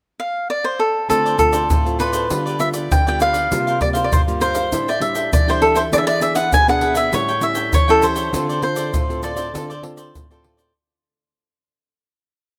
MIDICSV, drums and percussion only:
0, 0, Header, 1, 3, 480
1, 0, Start_track
1, 0, Key_signature, -1, "minor"
1, 0, Tempo, 603015
1, 875, Time_signature, 4, 2, 24, 8
1, 10019, End_track
2, 0, Start_track
2, 0, Title_t, "Pandeiro"
2, 879, Note_on_c, 9, 54, 70
2, 959, Note_off_c, 9, 54, 0
2, 1004, Note_on_c, 9, 54, 34
2, 1083, Note_off_c, 9, 54, 0
2, 1104, Note_on_c, 9, 54, 59
2, 1184, Note_off_c, 9, 54, 0
2, 1217, Note_on_c, 9, 54, 65
2, 1297, Note_off_c, 9, 54, 0
2, 1354, Note_on_c, 9, 54, 71
2, 1434, Note_off_c, 9, 54, 0
2, 1483, Note_on_c, 9, 54, 29
2, 1563, Note_off_c, 9, 54, 0
2, 1589, Note_on_c, 9, 54, 59
2, 1668, Note_off_c, 9, 54, 0
2, 1697, Note_on_c, 9, 54, 60
2, 1777, Note_off_c, 9, 54, 0
2, 1834, Note_on_c, 9, 54, 79
2, 1914, Note_off_c, 9, 54, 0
2, 1964, Note_on_c, 9, 54, 31
2, 2044, Note_off_c, 9, 54, 0
2, 2066, Note_on_c, 9, 54, 59
2, 2146, Note_off_c, 9, 54, 0
2, 2178, Note_on_c, 9, 54, 65
2, 2258, Note_off_c, 9, 54, 0
2, 2320, Note_on_c, 9, 54, 78
2, 2400, Note_off_c, 9, 54, 0
2, 2446, Note_on_c, 9, 54, 33
2, 2525, Note_off_c, 9, 54, 0
2, 2548, Note_on_c, 9, 54, 52
2, 2628, Note_off_c, 9, 54, 0
2, 2660, Note_on_c, 9, 54, 54
2, 2739, Note_off_c, 9, 54, 0
2, 2800, Note_on_c, 9, 54, 79
2, 2879, Note_off_c, 9, 54, 0
2, 2926, Note_on_c, 9, 54, 32
2, 3006, Note_off_c, 9, 54, 0
2, 3031, Note_on_c, 9, 54, 58
2, 3110, Note_off_c, 9, 54, 0
2, 3144, Note_on_c, 9, 54, 64
2, 3223, Note_off_c, 9, 54, 0
2, 3282, Note_on_c, 9, 54, 64
2, 3362, Note_off_c, 9, 54, 0
2, 3409, Note_on_c, 9, 54, 31
2, 3488, Note_off_c, 9, 54, 0
2, 3512, Note_on_c, 9, 54, 54
2, 3591, Note_off_c, 9, 54, 0
2, 3620, Note_on_c, 9, 54, 65
2, 3700, Note_off_c, 9, 54, 0
2, 3760, Note_on_c, 9, 54, 77
2, 3840, Note_off_c, 9, 54, 0
2, 3888, Note_on_c, 9, 54, 29
2, 3967, Note_off_c, 9, 54, 0
2, 3992, Note_on_c, 9, 54, 56
2, 4071, Note_off_c, 9, 54, 0
2, 4101, Note_on_c, 9, 54, 58
2, 4181, Note_off_c, 9, 54, 0
2, 4242, Note_on_c, 9, 54, 68
2, 4322, Note_off_c, 9, 54, 0
2, 4368, Note_on_c, 9, 54, 31
2, 4448, Note_off_c, 9, 54, 0
2, 4470, Note_on_c, 9, 54, 54
2, 4550, Note_off_c, 9, 54, 0
2, 4581, Note_on_c, 9, 54, 57
2, 4661, Note_off_c, 9, 54, 0
2, 4719, Note_on_c, 9, 54, 81
2, 4799, Note_off_c, 9, 54, 0
2, 4848, Note_on_c, 9, 54, 34
2, 4927, Note_off_c, 9, 54, 0
2, 4946, Note_on_c, 9, 54, 57
2, 5026, Note_off_c, 9, 54, 0
2, 5057, Note_on_c, 9, 54, 70
2, 5137, Note_off_c, 9, 54, 0
2, 5193, Note_on_c, 9, 54, 71
2, 5273, Note_off_c, 9, 54, 0
2, 5320, Note_on_c, 9, 54, 34
2, 5399, Note_off_c, 9, 54, 0
2, 5423, Note_on_c, 9, 54, 53
2, 5503, Note_off_c, 9, 54, 0
2, 5534, Note_on_c, 9, 54, 64
2, 5613, Note_off_c, 9, 54, 0
2, 5673, Note_on_c, 9, 54, 77
2, 5753, Note_off_c, 9, 54, 0
2, 5798, Note_on_c, 9, 54, 30
2, 5878, Note_off_c, 9, 54, 0
2, 5901, Note_on_c, 9, 54, 56
2, 5981, Note_off_c, 9, 54, 0
2, 6010, Note_on_c, 9, 54, 64
2, 6089, Note_off_c, 9, 54, 0
2, 6151, Note_on_c, 9, 54, 74
2, 6231, Note_off_c, 9, 54, 0
2, 6278, Note_on_c, 9, 54, 30
2, 6358, Note_off_c, 9, 54, 0
2, 6385, Note_on_c, 9, 54, 56
2, 6465, Note_off_c, 9, 54, 0
2, 6495, Note_on_c, 9, 54, 56
2, 6574, Note_off_c, 9, 54, 0
2, 6637, Note_on_c, 9, 54, 73
2, 6717, Note_off_c, 9, 54, 0
2, 6764, Note_on_c, 9, 54, 33
2, 6843, Note_off_c, 9, 54, 0
2, 6864, Note_on_c, 9, 54, 54
2, 6944, Note_off_c, 9, 54, 0
2, 6974, Note_on_c, 9, 54, 61
2, 7054, Note_off_c, 9, 54, 0
2, 7114, Note_on_c, 9, 54, 72
2, 7194, Note_off_c, 9, 54, 0
2, 7245, Note_on_c, 9, 54, 31
2, 7325, Note_off_c, 9, 54, 0
2, 7346, Note_on_c, 9, 54, 55
2, 7425, Note_off_c, 9, 54, 0
2, 7457, Note_on_c, 9, 54, 60
2, 7537, Note_off_c, 9, 54, 0
2, 7602, Note_on_c, 9, 54, 84
2, 7681, Note_off_c, 9, 54, 0
2, 7726, Note_on_c, 9, 54, 33
2, 7806, Note_off_c, 9, 54, 0
2, 7828, Note_on_c, 9, 54, 54
2, 7908, Note_off_c, 9, 54, 0
2, 7940, Note_on_c, 9, 54, 61
2, 8019, Note_off_c, 9, 54, 0
2, 8082, Note_on_c, 9, 54, 69
2, 8162, Note_off_c, 9, 54, 0
2, 8209, Note_on_c, 9, 54, 32
2, 8289, Note_off_c, 9, 54, 0
2, 8313, Note_on_c, 9, 54, 56
2, 8393, Note_off_c, 9, 54, 0
2, 8426, Note_on_c, 9, 54, 58
2, 8506, Note_off_c, 9, 54, 0
2, 10019, End_track
3, 0, Start_track
3, 0, Title_t, "Drums"
3, 879, Note_on_c, 9, 82, 68
3, 879, Note_on_c, 9, 87, 51
3, 959, Note_off_c, 9, 82, 0
3, 959, Note_off_c, 9, 87, 0
3, 1004, Note_on_c, 9, 82, 30
3, 1083, Note_off_c, 9, 82, 0
3, 1104, Note_on_c, 9, 82, 63
3, 1104, Note_on_c, 9, 87, 63
3, 1184, Note_off_c, 9, 82, 0
3, 1184, Note_off_c, 9, 87, 0
3, 1217, Note_on_c, 9, 82, 76
3, 1297, Note_off_c, 9, 82, 0
3, 1354, Note_on_c, 9, 82, 75
3, 1354, Note_on_c, 9, 87, 82
3, 1434, Note_off_c, 9, 82, 0
3, 1434, Note_off_c, 9, 87, 0
3, 1483, Note_on_c, 9, 82, 33
3, 1563, Note_off_c, 9, 82, 0
3, 1589, Note_on_c, 9, 82, 62
3, 1668, Note_off_c, 9, 82, 0
3, 1697, Note_on_c, 9, 82, 81
3, 1777, Note_off_c, 9, 82, 0
3, 1834, Note_on_c, 9, 82, 74
3, 1834, Note_on_c, 9, 87, 53
3, 1914, Note_off_c, 9, 82, 0
3, 1914, Note_off_c, 9, 87, 0
3, 1964, Note_on_c, 9, 82, 32
3, 2044, Note_off_c, 9, 82, 0
3, 2066, Note_on_c, 9, 82, 66
3, 2146, Note_off_c, 9, 82, 0
3, 2178, Note_on_c, 9, 82, 77
3, 2258, Note_off_c, 9, 82, 0
3, 2320, Note_on_c, 9, 82, 65
3, 2320, Note_on_c, 9, 87, 88
3, 2400, Note_off_c, 9, 82, 0
3, 2400, Note_off_c, 9, 87, 0
3, 2446, Note_on_c, 9, 82, 30
3, 2525, Note_off_c, 9, 82, 0
3, 2548, Note_on_c, 9, 82, 68
3, 2628, Note_off_c, 9, 82, 0
3, 2660, Note_on_c, 9, 82, 70
3, 2739, Note_off_c, 9, 82, 0
3, 2800, Note_on_c, 9, 82, 72
3, 2800, Note_on_c, 9, 87, 51
3, 2879, Note_off_c, 9, 82, 0
3, 2879, Note_off_c, 9, 87, 0
3, 2926, Note_on_c, 9, 82, 31
3, 3006, Note_off_c, 9, 82, 0
3, 3031, Note_on_c, 9, 87, 62
3, 3110, Note_off_c, 9, 87, 0
3, 3144, Note_on_c, 9, 82, 75
3, 3223, Note_off_c, 9, 82, 0
3, 3282, Note_on_c, 9, 82, 74
3, 3282, Note_on_c, 9, 87, 86
3, 3362, Note_off_c, 9, 82, 0
3, 3362, Note_off_c, 9, 87, 0
3, 3409, Note_on_c, 9, 82, 34
3, 3488, Note_off_c, 9, 82, 0
3, 3512, Note_on_c, 9, 82, 65
3, 3591, Note_off_c, 9, 82, 0
3, 3620, Note_on_c, 9, 82, 81
3, 3700, Note_off_c, 9, 82, 0
3, 3760, Note_on_c, 9, 82, 79
3, 3760, Note_on_c, 9, 87, 56
3, 3840, Note_off_c, 9, 82, 0
3, 3840, Note_off_c, 9, 87, 0
3, 3888, Note_on_c, 9, 82, 34
3, 3967, Note_off_c, 9, 82, 0
3, 4101, Note_on_c, 9, 82, 76
3, 4181, Note_off_c, 9, 82, 0
3, 4242, Note_on_c, 9, 82, 77
3, 4242, Note_on_c, 9, 87, 94
3, 4322, Note_off_c, 9, 82, 0
3, 4322, Note_off_c, 9, 87, 0
3, 4368, Note_on_c, 9, 82, 29
3, 4448, Note_off_c, 9, 82, 0
3, 4581, Note_on_c, 9, 82, 64
3, 4661, Note_off_c, 9, 82, 0
3, 4719, Note_on_c, 9, 82, 78
3, 4719, Note_on_c, 9, 87, 53
3, 4799, Note_off_c, 9, 82, 0
3, 4799, Note_off_c, 9, 87, 0
3, 4848, Note_on_c, 9, 82, 35
3, 4927, Note_off_c, 9, 82, 0
3, 4946, Note_on_c, 9, 82, 65
3, 5026, Note_off_c, 9, 82, 0
3, 5057, Note_on_c, 9, 82, 76
3, 5137, Note_off_c, 9, 82, 0
3, 5193, Note_on_c, 9, 82, 73
3, 5193, Note_on_c, 9, 87, 87
3, 5273, Note_off_c, 9, 82, 0
3, 5273, Note_off_c, 9, 87, 0
3, 5320, Note_on_c, 9, 82, 31
3, 5399, Note_off_c, 9, 82, 0
3, 5534, Note_on_c, 9, 82, 74
3, 5613, Note_off_c, 9, 82, 0
3, 5673, Note_on_c, 9, 82, 71
3, 5673, Note_on_c, 9, 87, 57
3, 5753, Note_off_c, 9, 82, 0
3, 5753, Note_off_c, 9, 87, 0
3, 5798, Note_on_c, 9, 82, 30
3, 5878, Note_off_c, 9, 82, 0
3, 5901, Note_on_c, 9, 82, 64
3, 5981, Note_off_c, 9, 82, 0
3, 6010, Note_on_c, 9, 82, 70
3, 6089, Note_off_c, 9, 82, 0
3, 6151, Note_on_c, 9, 82, 73
3, 6151, Note_on_c, 9, 87, 93
3, 6231, Note_off_c, 9, 82, 0
3, 6231, Note_off_c, 9, 87, 0
3, 6278, Note_on_c, 9, 82, 35
3, 6358, Note_off_c, 9, 82, 0
3, 6385, Note_on_c, 9, 82, 68
3, 6465, Note_off_c, 9, 82, 0
3, 6495, Note_on_c, 9, 82, 74
3, 6574, Note_off_c, 9, 82, 0
3, 6637, Note_on_c, 9, 82, 72
3, 6637, Note_on_c, 9, 87, 59
3, 6717, Note_off_c, 9, 82, 0
3, 6717, Note_off_c, 9, 87, 0
3, 6764, Note_on_c, 9, 82, 33
3, 6843, Note_off_c, 9, 82, 0
3, 6974, Note_on_c, 9, 82, 79
3, 7054, Note_off_c, 9, 82, 0
3, 7114, Note_on_c, 9, 82, 67
3, 7114, Note_on_c, 9, 87, 91
3, 7194, Note_off_c, 9, 82, 0
3, 7194, Note_off_c, 9, 87, 0
3, 7245, Note_on_c, 9, 82, 31
3, 7325, Note_off_c, 9, 82, 0
3, 7346, Note_on_c, 9, 82, 67
3, 7425, Note_off_c, 9, 82, 0
3, 7457, Note_on_c, 9, 82, 76
3, 7537, Note_off_c, 9, 82, 0
3, 7602, Note_on_c, 9, 82, 76
3, 7602, Note_on_c, 9, 87, 51
3, 7681, Note_off_c, 9, 82, 0
3, 7681, Note_off_c, 9, 87, 0
3, 7726, Note_on_c, 9, 82, 33
3, 7806, Note_off_c, 9, 82, 0
3, 7940, Note_on_c, 9, 82, 78
3, 8019, Note_off_c, 9, 82, 0
3, 8082, Note_on_c, 9, 82, 72
3, 8082, Note_on_c, 9, 87, 89
3, 8162, Note_off_c, 9, 82, 0
3, 8162, Note_off_c, 9, 87, 0
3, 8209, Note_on_c, 9, 82, 31
3, 8289, Note_off_c, 9, 82, 0
3, 8426, Note_on_c, 9, 82, 71
3, 8506, Note_off_c, 9, 82, 0
3, 10019, End_track
0, 0, End_of_file